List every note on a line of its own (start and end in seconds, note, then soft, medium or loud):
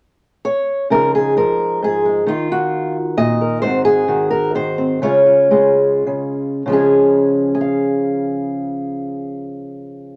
0.45 0.87 C#5 medium
0.90 1.36 C#3 medium
0.90 1.36 F3 soft
0.90 2.05 G#3 soft
0.90 2.28 D#4 soft
0.90 1.14 A#4 medium
1.15 1.37 G#4 medium
1.37 2.25 F3 medium
1.37 1.83 A#4 medium
1.82 2.25 G#2 medium
1.82 2.28 G#4 medium
2.06 2.27 G#3 soft
2.27 3.62 D#3 medium
2.27 2.51 D#4 soft
2.27 2.96 F4 medium
2.52 3.41 F#4 medium
3.17 3.63 A#2 medium
3.17 3.61 D#5 medium
3.41 3.61 A#4 soft
3.62 4.98 G#2 medium
3.62 4.07 D#3 soft
3.62 4.77 C4 soft
3.62 4.07 F#4 soft
3.62 3.84 C5 medium
3.85 4.30 G#4 medium
4.08 4.54 D#3 medium
4.08 4.99 F#4 soft
4.30 4.54 A#4 medium
4.55 4.99 D#3 medium
4.55 5.02 C5 medium
4.78 4.99 C4 soft
5.02 6.05 C#3 medium
5.02 5.50 G#3 soft
5.02 6.63 C#4 soft
5.02 5.25 F4 soft
5.02 6.66 C#5 medium
5.26 5.50 F4 soft
5.51 6.61 G#3 medium
5.51 6.62 F4 soft
6.07 6.62 C#3 medium
6.66 10.16 C#3 medium
6.66 10.16 F3 medium
6.66 7.54 G#3 soft
6.72 10.16 C#4 soft
6.72 7.49 G#4 medium
7.55 10.16 G#4 medium
7.61 10.16 F5 medium